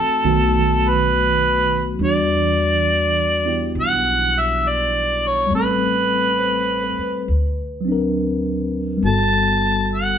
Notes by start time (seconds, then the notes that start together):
Already playing: E3 A3 C4 F#4 A4
0.24 B1 D#3 A3 B3 F#4
0.89 B4
1.95 E3 G3
1.99 E2 D4
2.05 F#4 D5
3.46 B3 E4 G4
3.75 B1
3.81 F#5
4.40 E5
4.69 D5
5.27 C#5
5.46 G3 A3
5.50 A1 C4
5.55 A4 B4
6.39 C5
6.84 B4
6.99 muted upright bass stroke
7.28 D2
7.81 F#3
7.85 C4 D4
7.92 A#4
8.97 G3 B3
9.02 G1 F#4 A5
9.07 A4
9.95 F#5